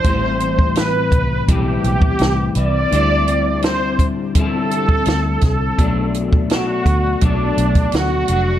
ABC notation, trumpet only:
X:1
M:4/4
L:1/8
Q:1/4=84
K:Am
V:1 name="Trumpet"
c2 B2 G3 d- | d2 c z A3 A- | A z ^F2 D2 F2 |]